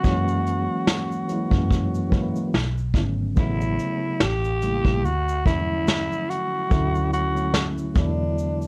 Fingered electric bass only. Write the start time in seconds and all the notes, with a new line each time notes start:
0.05 F#2
1.52 F#2
2.55 B1
2.95 G#1
3.38 A1
4.22 A1
4.85 A#1
5.05 D2
5.46 E2
6.72 D2
7.97 E2